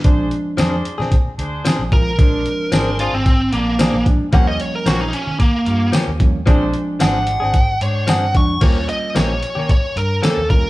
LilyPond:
<<
  \new Staff \with { instrumentName = "Lead electric guitar" } { \time 4/4 \key bes \dorian \tempo 4 = 112 r2. r8 bes'8~ | bes'4. f'16 c'8. bes4 r8 | ges''16 ees''16 des''16 bes'16 ges'16 ees'16 des'8 bes4 r4 | r4 ges''4. des''8 ges''8 des'''8 |
des''8 ees''8 des''4 des''8 bes'8 a'8 bes'8 | }
  \new Staff \with { instrumentName = "Horn section" } { \time 4/4 \key bes \dorian <d' aes' c''>8 r8 <d' aes' c''>8. r8. <d' aes' c''>8. r8. | <d' aes' c''>8 r8 <d' aes' c''>8. r8. <d' aes' d''>8. r8. | <f' g' des''>8 r8 <f' g' des''>8. r8. <f' g' des''>8. r8. | <d' aes' c''>8 r8 <d' aes' c''>8. r8. <d' aes' c''>8. r8. |
r1 | }
  \new Staff \with { instrumentName = "Clean electric guitar" } { \time 4/4 \key bes \dorian r4 <f c' d' aes'>16 r8 <c' d' aes'>16 r4 <f c' d' aes'>16 r8. | r4 <f c' d' aes'>16 r16 <f c' d' aes'>16 r4 r16 <f c' d' aes'>16 r8. | <f bes des' g'>16 r8. <f bes des' g'>16 r4. r16 <f bes des' g'>16 r8. | <f c' d' aes'>16 r8. <f c' d' aes'>16 r8 <c' d' aes'>16 r4 <f c' d' aes'>16 r8. |
<f bes des' g'>16 r8. <f bes des' g'>16 r8 <bes des' g'>16 r4 <f bes des' g'>16 r8. | }
  \new Staff \with { instrumentName = "Reed electric piano" } { \time 4/4 \key bes \dorian <f aes c' d'>4. r2 <f aes c' f'>8 | <f aes c' d'>4. r2 <f aes c' d'>8 | <f g bes des'>4. r2 <f g bes des'>8 | <f aes c' d'>4. r2 <f aes c' d'>8 |
<g bes des' f'>4. r2 <g bes des' f'>8 | }
  \new Staff \with { instrumentName = "Fingered electric bass" } { \clef bass \time 4/4 \key bes \dorian bes,,8 r8 f,8 r16 bes,8 r16 d,8 r16 bes,,8. | bes,,8 r8 aes,,8. aes,,8. bes,,8. bes,,8 r16 | ees,8 r8 bes,,8 r16 ees8 r16 g,8 r16 ees,8. | bes,,8 r8 aes,,8. aes,,8. aes,8 g,8 f,8 |
ees,8 r8 bes,,8 r16 ees8 r16 g,8 r16 ees,8. | }
  \new DrumStaff \with { instrumentName = "Drums" } \drummode { \time 4/4 <hh bd>8 hh8 <hh sn tamb>8 hh16 sn16 <hh bd>8 hh8 <hh sn tamb>8 <hh bd>8 | <hh bd>8 hh8 <hh sn tamb>8 hh8 <hh bd>8 hh8 <hh sn tamb>8 <hh bd>8 | <hh bd>8 hh8 <hh sn tamb>8 hh8 <hh bd>8 hh8 <hh sn tamb>8 <hh bd>8 | <hh bd>8 hh8 <hh sn tamb>8 hh8 <hh bd>8 hh8 <hh sn tamb>8 <hh bd>8 |
<cymc hh bd>8 hh8 <hh sn tamb>8 hh8 <hh bd>8 hh8 <hh sn tamb>8 <hh bd>8 | }
>>